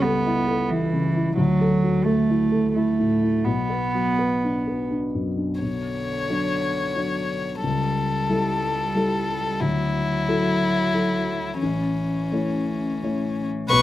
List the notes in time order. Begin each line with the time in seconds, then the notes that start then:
Already playing: C#2 G3 A4
0.02 B3 A4
0.27 E4
0.47 A4
0.69 E3 E4
0.93 C#3
1.16 E4
1.37 D2 F#3
1.61 A4
1.84 F#3
2.04 A3 A4
2.30 E4
2.52 A4
2.73 A3 E4
2.99 A2
3.23 E4
3.44 B1 B3
3.70 B4
3.94 F#3
4.19 B4
4.44 D4
4.68 B4
4.91 D4
5.15 F#2
5.36 D4
5.60 B1 D3 C#5
6.29 F#3 D4 C#5
6.96 F#3 D4 C#5
7.62 C#2 G3 A4
8.29 G3 E4 A4
8.95 G3 E4 A4
9.60 D2 F#3 E4
10.28 F#3 E4 A4
10.94 F#3 E4 A4
11.61 A1 E3 C#4
12.32 A3 E4 C#5
13.03 A3 E4 C#5
13.71 B1 F#3 B4 C#6